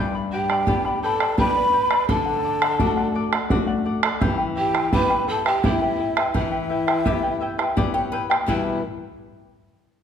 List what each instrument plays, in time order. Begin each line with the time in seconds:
Already playing: nylon-string guitar G2, charango G4 B4 D5 G5 B5
0.15 charango B4 D5 B5
0.32 pan flute G4, charango B4 D5 G5 B5, quena G5
0.50 charango G4 B4 D5 G5 B5, bombo rim
0.67 nylon-string guitar B3 D4 G4, charango B4 D5 G5 B5, bombo low
0.85 charango B4 D5 B5, bombo rim
1.02 pan flute A4, charango B4 D5 G5 B5, quena A5
1.20 charango G4 B4 D5 G5 B5, bombo rim
1.37 nylon-string guitar B3 D4 G4, charango G4 B4 D5 G5 B5, pan flute B4, quena B5, bombo low
1.56 charango B4 D5 B5
1.73 charango B4 D5 G5 B5
1.91 charango G4 B4 D5 G5 B5, bombo rim
2.08 nylon-string guitar D3, charango A4 D5 F#5, pan flute A4, quena A5, bombo rim, bombo low
2.26 charango D5 F#5
2.43 charango A4 D5 F#5
2.62 charango A4 D5 F#5, bombo rim
2.79 nylon-string guitar A3 D4 F#4, charango A4 D5 F#5, bombo low
2.97 charango D5 F#5, bombo rim
3.14 charango A4 D5 F#5
3.33 charango A4 D5 F#5, bombo rim
3.50 nylon-string guitar A3 D4 F#4, charango A4 D5 F#5, bombo low
3.67 charango D5 F#5
3.85 charango A4 D5 F#5
4.03 charango A4 D5 F#5, bombo rim
4.21 nylon-string guitar E3, charango E4 G4 B4 E5 G5, bombo rim, bombo low
4.38 charango E4 B4 G5
4.56 charango E4 B4 E5 G5, pan flute G4, quena G5
4.74 charango E4 G4 B4 E5 G5, bombo rim
4.92 nylon-string guitar B3 E4 G4, charango E4 B4 E5 G5, pan flute B4, quena B5, bombo low
5.09 charango E4 B4 G5, bombo rim
5.28 charango E4 B4 E5 G5, pan flute A4, quena A5
5.45 charango E4 G4 B4 E5 G5, pan flute G4, quena G5, bombo rim
5.63 nylon-string guitar B3 E4 G4, charango E4 G4 B4 E5 G5, pan flute E4, quena E5, bombo low
5.81 charango E4 B4 G5
5.99 charango E4 B4 E5 G5
6.17 charango E4 G4 B4 E5 G5, bombo rim
6.34 nylon-string guitar E3, charango E4 B4 E5 G5, pan flute E4, quena E5, bombo rim, bombo low
6.51 charango E4 B4 G5
6.69 charango E4 B4 E5 G5
6.87 charango E4 G4 B4 E5 G5, bombo rim
7.05 nylon-string guitar B3 E4 G4, charango E4 G4 B4 E5 G5, bombo low
7.23 charango E4 B4 G5
7.41 charango E4 B4 E5 G5
7.58 charango E4 G4 B4 E5 G5, bombo rim
7.77 nylon-string guitar B3 E4 G4 D5, charango E4 B4 E5 G5, bombo low
7.94 charango E4 B4 G5, nylon-string guitar C#5
8.12 charango E4 B4 E5 G5, nylon-string guitar B4, bombo rim
8.30 charango E4 G4 B4 E5 G5, bombo rim
8.46 nylon-string guitar E2 B2 G3 B3 E4 B4, pan flute E4, charango E4 G4 B4 E5 G5, quena E5, bombo low